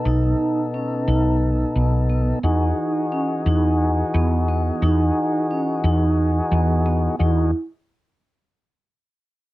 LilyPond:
<<
  \new Staff \with { instrumentName = "Tonewheel organ" } { \time 7/8 \key e \major \tempo 4 = 88 <b, b dis' a'>2.~ <b, b dis' a'>8 | <e dis' fis' gis'>2.~ <e dis' fis' gis'>8~ | <e dis' fis' gis'>2.~ <e dis' fis' gis'>8 | <e dis' fis' gis'>8 r2. | }
  \new Staff \with { instrumentName = "Vibraphone" } { \time 7/8 \key e \major dis'4 cis'8 dis'4 b8 b8 | dis'4 cis'8 dis'4 b8 b8 | dis'4 cis'8 dis'4 b8 b8 | e'8 r2. | }
  \new Staff \with { instrumentName = "Fretless electric bass" } { \clef bass \time 7/8 \key e \major b,,8 r4 b,,4 b,,4 | e,8 r4 e,4 e,4 | e,8 r4 e,4 e,4 | e,8 r2. | }
>>